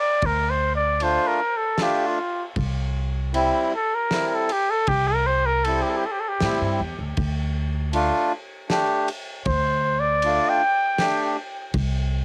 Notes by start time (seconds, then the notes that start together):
0.00 D5
0.22 D2, kick, ride
0.26 A#4
0.50 C5
0.76 D5
1.00 A3 D4 F4 C5, ride
1.27 A#4
1.57 A4
1.78 A3 D4 F4, snare, ride
1.83 G4
2.07 F4
2.56 C2, kick, ride
3.34 G3 C4 E4, ride
3.76 A4
3.95 A#4
4.11 G3 C4 E4, snare, ride
4.28 A#4
4.35 A4
4.49 G4, ride
4.71 A4
4.87 C2 G4, kick, ride
5.08 A#4
5.27 C5
5.46 A#4
5.64 G3 C4 E4 A4, ride
5.82 G4
5.90 A4
5.97 G4
6.06 A4
6.12 G4
6.20 A4
6.29 G4
6.40 A2 G3 C4 E4, snare, ride
6.61 G2
6.80 E2
6.99 D2
7.17 D2, kick, ride
7.93 A3 D4 F4, ride
8.70 A3 D4 G4, snare, ride
9.08 ride
9.46 D2 C5, kick, ride
10.00 D5
10.22 A3 D4 F4, ride
10.49 G5
10.98 A3 D4 G4, snare, ride
11.74 C2, kick, ride